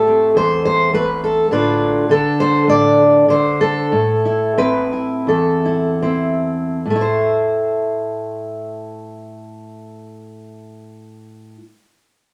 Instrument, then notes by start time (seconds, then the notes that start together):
steel-string acoustic guitar
Already playing: A2 A3 G4 A4
0.07 C4
0.35 E2 C5
0.65 C5
0.93 A3 B4
1.24 A4
1.51 A2 D3 D4 F4 B4
2.09 D3 A4
2.40 C5
2.67 A2 D5
3.28 D3 C5
3.61 A4
3.92 A2
4.25 E4
4.58 C4 B4
4.93 E4
5.27 E2 A4
5.65 E4
6.02 C4 E4
6.86 A2
6.90 A3
6.96 E4
7.01 C5